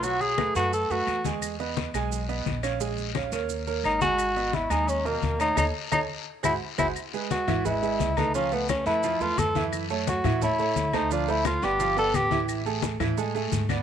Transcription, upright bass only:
\new Staff \with { instrumentName = "Upright bass" } { \clef bass \time 4/4 \key gis \minor \tempo 4 = 174 b,,4. fis,4 fis,8 e,4~ | e,4. b,,4. ais,,4~ | ais,,4. dis,4. gis,,4~ | gis,,4. dis,4. dis,4 |
dis,8 r8 dis,8 r4 gis,,8 r8 gis,,8 | \key cis \minor r4. gis,,4. cis,4~ | cis,4. eis,4 e,8 fis,4~ | fis,4. a,4. d,4~ |
d,4. g,,4. a,,4~ | a,,4. a,4. gis,4 | }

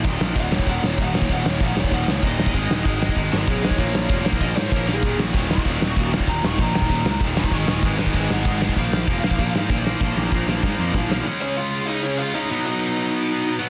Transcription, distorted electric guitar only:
\new Staff \with { instrumentName = "Distorted electric guitar" } { \clef bass \time 4/4 \key ees \minor \tempo 4 = 193 <ees, bes, ees>4 <ees, bes, ees>8 <ees, bes, ees>8 <ees, bes, ees>4 <ees, bes, ees>8 <ees, bes, ees>8 | <ees, bes, ees>4 <ees, bes, ees>8 <ees, bes, ees>8 <ees, bes, ees>4 <ees, bes, ees>8 <ees, bes, ees>8 | <aes, ees aes>4 <aes, ees aes>8 <aes, ees aes>8 <aes, ees aes>4 <aes, ees aes>8 <aes, ees aes>8 | <bes, f bes>4 <bes, f bes>8 <bes, f bes>8 <bes, f bes>4 <bes, f bes>8 <bes, f bes>8 |
<ees, bes, ees>4 <ees, bes, ees>8 <ees, bes, ees>8 <ees, bes, ees>4 <ees, bes, ees>8 <ees, bes, ees>8 | <ees, bes, ees>4 <ees, bes, ees>8 <ees, bes, ees>8 <ees, bes, ees>4 <ees, bes, ees>8 <ees, bes, ees>8 | <aes, ees aes>4 <aes, ees aes>8 <aes, ees aes>8 <aes, ees aes>4 <aes, ees aes>8 <aes, ees aes>8 | <bes, f bes>4 <bes, f bes>8 <bes, f bes>8 <bes, f bes>4 <bes, f bes>8 <bes, f bes>8 |
<bes, f bes>8 <bes, f bes>8 <bes, f bes>8 <bes, f bes>8 <bes, f bes>8 <bes, f bes>8 <bes, f bes>8 <bes, f bes>8 | <des aes des'>2.~ <des aes des'>8 <des aes des'>8 | <b, fis b>2.~ <b, fis b>8 <b, fis b>8 | }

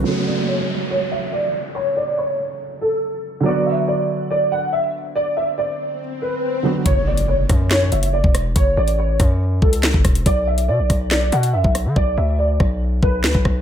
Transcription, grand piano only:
\new Staff \with { instrumentName = "Grand piano" } { \time 4/4 \key fis \minor \tempo 4 = 141 cis''8 d''8 cis''4 cis''8 e''8 d''8 r8 | cis''8 d''8 cis''4 r8 a'4. | d''8 e''8 d''4 d''8 fis''8 e''8 r8 | d''8 e''8 d''4 r8 b'4. |
cis''8 d''8 cis''4 cis''8 e''8 d''8 r8 | cis''8 d''8 cis''4 r8 a'4. | d''8 e''8 d''4 d''8 fis''8 e''8 r8 | d''8 e''8 d''4 r8 b'4. | }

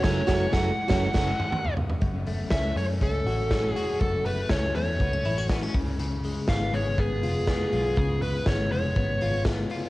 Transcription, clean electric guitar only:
\new Staff \with { instrumentName = "Clean electric guitar" } { \time 4/4 \key fis \minor \tempo 4 = 121 r1 | fis,8 a8 cis'8 a8 cis'8 fis'8 cis'8 fis'8 | fis,8 a8 cis'8 a8 b16 cis'16 e'16 fis'16 b16 cis'16 cis8 | cis8 gis8 b8 gis8 b8 eis'8 b8 eis'8 |
cis8 gis8 b8 gis8 b8 eis'8 b8 eis'8 | }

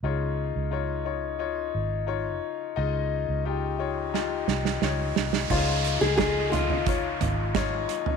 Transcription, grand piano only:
<<
  \new Staff \with { instrumentName = "Grand piano" } { \time 4/4 \key des \lydian \tempo 4 = 88 <ees' f' des''>8. r16 <ees' f' des''>8 <ees' f' des''>8 <ees' f' des''>8. r16 <ees' f' des''>8. r16 | <ees' f' ees''>8. r16 <ees' f' g'>8 <ees' f' des''>8 <ees' f' g'>8. r16 <ees' f' des''>8. r16 | <ees' f' des''>8. r16 <ees' f' ees''>8. r16 <ees' f' des''>8. r16 <ees' f' des''>8. r16 | }
  \new Staff \with { instrumentName = "Grand piano" } { \clef bass \time 4/4 \key des \lydian des4. r2 r8 | des4. r2 r8 | des4. r2 r8 | }
>>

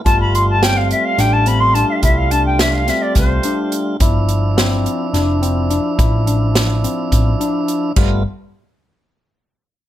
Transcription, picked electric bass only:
\new Staff \with { instrumentName = "Picked electric bass" } { \clef bass \time 7/8 \key d \dorian \tempo 4 = 106 g,,2 a,,4. | c,2 c,8 r4 | g,,2 f,,4. | a,,2 a,,8 r4 |
g,,8 r2. | }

